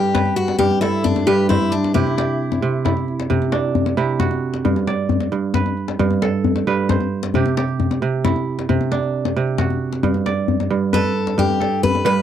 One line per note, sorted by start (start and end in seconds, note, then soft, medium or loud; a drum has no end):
0.00 0.58 G2 medium
0.00 0.20 C4 medium
0.00 0.58 D4 medium
0.00 0.69 E4 medium
0.00 0.36 G4 medium
0.00 0.57 D5 medium
0.14 1.27 B4 medium
0.14 djembe slap medium
0.14 djembe bass medium
0.25 djembe tone medium
0.36 0.58 F#4 medium
0.48 djembe slap medium
0.59 1.26 G2 medium
0.59 0.81 G4 loud
0.59 djembe slap soft
0.59 djembe bass medium
0.71 djembe tone medium
0.81 1.05 E4 medium
0.81 2.14 A4 medium
0.81 djembe slap medium
1.04 1.28 D4 medium
1.04 djembe bass medium
1.16 djembe slap soft
1.16 djembe tone soft
1.27 2.00 G2 medium
1.27 1.49 G4 medium
1.27 2.01 B4 medium
1.49 1.73 E4 medium
1.49 2.68 C5 medium
1.49 djembe slap medium
1.49 djembe bass medium
1.62 djembe slap soft
1.62 djembe tone soft
1.72 1.94 D4 medium
1.84 djembe slap soft
1.94 2.61 C3 medium
1.94 3.71 E4 medium
1.94 2.17 G4 medium
1.94 djembe bass medium
2.07 djembe tone soft
2.18 3.59 G4 medium
2.18 djembe slap medium
2.52 djembe slap soft
2.52 djembe tone soft
2.62 3.29 C3 medium
2.85 3.97 E4 medium
2.85 djembe slap medium
2.85 djembe bass medium
2.97 djembe tone soft
3.08 djembe slap soft
3.20 djembe slap medium
3.30 3.96 C3 medium
3.30 djembe slap soft
3.30 djembe bass medium
3.42 djembe tone medium
3.52 5.20 D4 medium
3.52 djembe slap medium
3.75 djembe bass medium
3.86 djembe slap soft
3.86 djembe tone medium
3.97 4.70 C3 medium
3.97 5.54 E4 medium
4.20 5.38 F#4 medium
4.20 djembe slap medium
4.20 djembe bass medium
4.31 djembe slap soft
4.31 djembe tone medium
4.54 djembe slap soft
4.65 5.31 G2 medium
4.65 djembe bass medium
4.76 djembe tone medium
4.87 5.98 D5 medium
4.87 djembe slap medium
5.09 djembe bass medium
5.20 djembe slap medium
5.20 djembe tone medium
5.32 5.98 G2 medium
5.54 6.67 B4 medium
5.54 djembe slap medium
5.54 djembe bass medium
5.66 djembe tone medium
5.77 djembe slap soft
5.88 djembe slap medium
5.99 6.66 G2 medium
5.99 djembe slap soft
5.99 djembe bass medium
6.11 djembe tone medium
6.22 7.54 A4 medium
6.22 djembe slap medium
6.44 djembe bass medium
6.56 djembe slap medium
6.56 djembe tone medium
6.67 7.39 G2 medium
6.67 7.41 B4 medium
6.89 8.08 C5 medium
6.89 djembe slap medium
6.89 djembe bass medium
7.00 djembe slap soft
7.00 djembe tone medium
7.23 djembe slap medium
7.34 8.01 C3 medium
7.34 7.57 G4 medium
7.34 djembe bass medium
7.46 djembe slap soft
7.46 djembe tone medium
7.57 8.99 G4 medium
7.57 djembe slap medium
7.68 djembe slap soft
7.80 djembe slap soft
7.80 djembe bass medium
7.91 djembe slap soft
7.91 djembe tone medium
8.02 8.68 C3 medium
8.25 9.81 E4 medium
8.25 djembe slap medium
8.25 djembe bass medium
8.36 djembe tone medium
8.59 djembe slap medium
8.69 9.35 C3 medium
8.69 djembe bass medium
8.81 djembe tone medium
8.92 10.59 D4 medium
8.92 djembe slap medium
9.03 djembe slap soft
9.25 djembe slap medium
9.25 djembe tone soft
9.37 10.08 C3 medium
9.47 djembe slap soft
9.58 10.76 F#4 medium
9.58 djembe slap medium
9.58 djembe bass medium
9.70 djembe slap soft
9.70 djembe tone soft
9.93 djembe slap soft
10.03 10.69 G2 medium
10.03 djembe bass medium
10.14 djembe tone soft
10.26 11.37 D5 medium
10.26 djembe slap medium
10.48 djembe bass medium
10.60 djembe slap soft
10.60 djembe tone soft
10.70 11.37 G2 medium
10.93 11.38 A4 medium
10.93 12.05 B4 medium
10.93 djembe slap medium
10.93 djembe bass medium
11.04 djembe tone soft
11.16 djembe slap soft
11.27 djembe slap medium
11.38 12.04 G2 medium
11.38 11.83 G4 medium
11.38 djembe slap soft
11.38 djembe bass medium
11.50 djembe tone soft
11.60 12.22 A4 medium
11.60 djembe slap medium
11.83 12.04 B4 medium
11.83 djembe bass medium
11.95 djembe slap soft
11.95 djembe tone soft
12.05 12.22 G2 medium
12.05 12.22 B4 medium